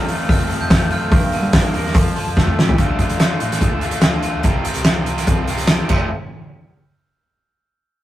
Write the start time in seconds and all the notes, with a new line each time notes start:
Already playing: F2 C3 F3 F4 F6
0.07 D3 A3 C4 F4 A4, open hi-hat
0.29 F2 C4 F6, kick, open hi-hat
0.48 C4 F4 A4, open hi-hat
0.53 F3
0.60 F2 G6
0.68 F3 A3 C4 F4 A4, kick, snare, open hi-hat
0.90 F#2 F4 F6, open hi-hat
1.11 G2 G3 A#3 D4 A#4, kick, open hi-hat
1.32 D3, open hi-hat
1.42 G3
1.53 F3 G3 A#3 D4 A#4, kick, snare, open hi-hat
1.74 E2 A#3 D4 A#4, open hi-hat
1.86 snare
1.94 F2 F3 C4 F4 A4, kick, open hi-hat
2.16 F3 C4 F4 A4, open hi-hat
2.26 F2
2.37 F3 A3 C4 F4 A4, kick, snare
2.47 kick
2.57 A1 G4, snare
2.69 floor tom
2.76 D2 D3 F3 A3 D4, kick, closed hi-hat
2.80 F4
2.98 A3 D4 F4, kick, closed hi-hat
3.10 F2, closed hi-hat
3.18 D3 F3 A3 D4 F4, snare, closed hi-hat
3.39 A1 A3 D4 F4, closed hi-hat
3.52 snare, closed hi-hat
3.59 D3 A3 D4 F4, kick, closed hi-hat
3.72 D2
3.81 D3 A3 D4 F4, closed hi-hat
3.91 closed hi-hat
4.01 D2 D3 F3 A3 D4 F4, snare, closed hi-hat
4.22 A3 D4 F4, closed hi-hat
4.34 D2
4.43 C2 C3 F3 G3 C4 F4 G4, kick, closed hi-hat
4.65 G3 C4 F4 G4, closed hi-hat
4.74 C2, closed hi-hat
4.84 C3 F3 G3 C4 F4 G4, snare, closed hi-hat
5.06 C2 G3 C4 F4 G4, closed hi-hat
5.18 snare, closed hi-hat
5.27 F3 G3 C4, kick, closed hi-hat
5.31 F4
5.37 C2
5.47 F3 G3 F4 G4, closed hi-hat
5.52 C3 C4
5.58 C2, closed hi-hat
5.67 F3 G3 C4, snare, closed hi-hat
5.71 F4 G4
5.89 F1 F3 A3 F4, kick, crash
5.93 C4